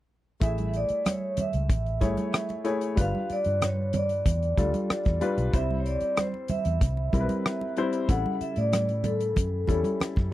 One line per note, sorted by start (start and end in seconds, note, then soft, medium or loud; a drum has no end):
0.40 0.84 A1 medium
0.40 1.42 A3 medium
0.40 1.43 E4 soft
0.40 1.43 G#4 medium
0.40 1.43 E5 medium
0.40 0.76 E5 medium
0.40 kick loud
0.40 closed hi-hat medium
0.58 closed hi-hat soft
0.58 high conga soft
0.74 1.08 D5 medium
0.74 closed hi-hat soft
0.89 muted fingered electric bass stroke soft
0.89 closed hi-hat soft
1.06 1.40 C#5 medium
1.06 cross-stick medium
1.06 closed hi-hat medium
1.06 muted conga soft
1.06 high conga medium
1.37 2.63 E5 medium
1.37 muted fingered electric bass stroke soft
1.37 closed hi-hat medium
1.37 high conga medium
1.37 low conga medium
1.53 1.68 C#2 medium
1.53 closed hi-hat soft
1.70 2.01 A1 medium
1.70 kick medium
1.70 closed hi-hat medium
1.70 muted conga soft
1.70 low conga medium
1.86 closed hi-hat soft
2.01 2.16 G#1 medium
2.01 2.52 A3 medium
2.01 2.52 E4 medium
2.01 2.52 G#4 medium
2.01 2.52 C#5 medium
2.01 kick medium
2.01 closed hi-hat medium
2.01 high conga medium
2.17 closed hi-hat soft
2.17 high conga medium
2.34 cross-stick loud
2.34 closed hi-hat medium
2.49 closed hi-hat soft
2.49 muted conga soft
2.64 2.90 A3 medium
2.64 2.90 E4 medium
2.64 2.91 G#4 medium
2.64 2.91 C#5 medium
2.64 closed hi-hat medium
2.81 closed hi-hat soft
2.96 3.12 G1 medium
2.96 3.98 G3 medium
2.96 3.98 D4 medium
2.96 3.98 F4 medium
2.96 3.99 B4 medium
2.96 kick medium
2.96 closed hi-hat medium
2.96 muted conga soft
3.01 3.32 F5 medium
3.15 high conga soft
3.30 3.64 D5 medium
3.30 muted fingered electric bass stroke soft
3.30 closed hi-hat soft
3.44 4.22 G2 medium
3.44 closed hi-hat soft
3.62 3.96 C#5 medium
3.62 cross-stick medium
3.62 closed hi-hat medium
3.62 high conga medium
3.93 5.19 D5 medium
3.93 closed hi-hat medium
3.93 high conga medium
3.93 low conga medium
4.09 closed hi-hat soft
4.26 4.54 E2 medium
4.26 kick medium
4.26 closed hi-hat medium
4.26 low conga medium
4.43 closed hi-hat soft
4.57 4.72 D2 medium
4.57 5.08 G3 medium
4.57 5.08 D4 medium
4.57 5.08 F4 medium
4.57 5.08 A4 medium
4.57 kick medium
4.57 closed hi-hat medium
4.57 high conga medium
4.74 closed hi-hat soft
4.74 high conga medium
4.90 muted fingered electric bass stroke soft
4.90 cross-stick medium
4.90 closed hi-hat medium
5.05 5.20 E2 medium
5.05 kick medium
5.05 closed hi-hat soft
5.21 5.46 G3 medium
5.21 5.47 D4 medium
5.21 5.47 F4 medium
5.21 5.47 B4 medium
5.21 closed hi-hat medium
5.38 5.51 B1 medium
5.38 closed hi-hat soft
5.53 6.54 G3 medium
5.53 6.55 C4 medium
5.53 6.55 E4 medium
5.53 6.55 C5 medium
5.53 5.80 E5 loud
5.53 kick loud
5.53 closed hi-hat medium
5.53 muted conga soft
5.70 high conga soft
5.80 5.86 C#5 medium
5.86 6.19 D5 medium
5.86 closed hi-hat medium
6.01 muted fingered electric bass stroke soft
6.01 closed hi-hat soft
6.17 6.50 C5 medium
6.17 cross-stick medium
6.17 closed hi-hat medium
6.17 high conga medium
6.34 muted conga soft
6.48 7.73 E5 medium
6.48 muted fingered electric bass stroke soft
6.48 closed hi-hat medium
6.48 high conga medium
6.48 low conga medium
6.65 6.79 E2 medium
6.65 closed hi-hat soft
6.81 7.09 C2 medium
6.81 kick medium
6.81 closed hi-hat medium
6.81 low conga medium
6.97 muted conga soft
7.13 7.27 B1 medium
7.13 7.63 G3 medium
7.13 7.64 C4 medium
7.13 7.64 E4 medium
7.13 7.20 A#4 medium
7.13 kick medium
7.13 closed hi-hat soft
7.13 high conga medium
7.20 7.67 B4 medium
7.29 closed hi-hat soft
7.29 high conga medium
7.46 cross-stick loud
7.46 closed hi-hat medium
7.61 muted conga soft
7.77 8.02 G3 medium
7.77 8.02 C4 medium
7.77 8.03 E4 medium
7.77 8.03 C5 medium
7.77 closed hi-hat medium
7.93 closed hi-hat soft
8.09 8.23 A1 medium
8.09 9.10 C#3 medium
8.09 9.10 G3 medium
8.09 9.10 E4 medium
8.09 9.10 A4 medium
8.09 8.42 F#5 loud
8.09 kick medium
8.09 closed hi-hat medium
8.09 muted conga soft
8.26 muted conga soft
8.26 high conga soft
8.41 8.57 E5 medium
8.41 muted fingered electric bass stroke soft
8.41 closed hi-hat soft
8.56 9.33 A2 medium
8.56 9.06 D5 medium
8.56 closed hi-hat soft
8.73 cross-stick medium
8.73 closed hi-hat medium
8.73 high conga medium
8.89 closed hi-hat soft
8.89 muted conga soft
9.04 9.96 A4 medium
9.04 closed hi-hat medium
9.04 high conga medium
9.04 low conga medium
9.21 closed hi-hat soft
9.36 9.65 F#2 medium
9.36 kick medium
9.36 closed hi-hat medium
9.36 low conga medium
9.67 9.83 E2 medium
9.67 10.19 G3 medium
9.67 10.19 C#4 soft
9.67 10.19 E4 medium
9.67 10.19 A4 medium
9.67 kick medium
9.67 closed hi-hat medium
9.67 high conga medium
9.84 closed hi-hat soft
9.84 high conga medium
10.00 muted fingered electric bass stroke soft
10.00 cross-stick medium
10.00 closed hi-hat medium
10.00 muted conga soft
10.16 10.31 F#2 medium
10.16 kick medium
10.16 muted conga soft